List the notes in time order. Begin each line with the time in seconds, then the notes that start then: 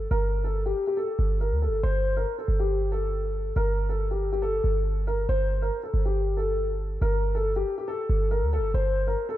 0.11 G1 A#4
0.44 A4
0.66 G4
0.87 G4
0.97 A4
1.19 G1
1.41 A#4
1.52 D2
1.62 A4
1.68 G1
1.83 G1 C5
2.17 A#4
2.38 A4
2.48 G1
2.60 G4
2.92 A4
3.56 G1 A#4
3.89 A4
4.11 G4
4.32 G4
4.42 A4
4.64 G1
5.07 A#4
5.29 G1 C5
5.62 A#4
5.83 A4
5.94 G1
6.05 G4
6.37 A4
7.02 G1 A#4
7.35 A4
7.56 G4
7.78 G4
7.88 A4
8.10 G1
8.31 A#4
8.43 D2
8.53 A4
8.58 G1
8.74 G1 C5
9.07 A#4
9.29 A4